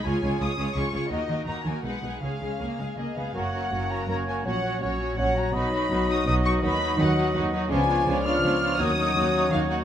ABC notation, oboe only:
X:1
M:3/4
L:1/8
Q:1/4=165
K:F#
V:1 name="Oboe"
z6 | z6 | z6 | c4 c2 |
c2 c2 c2 | d4 d2 | d2 d4 | =d6 |
c6 |]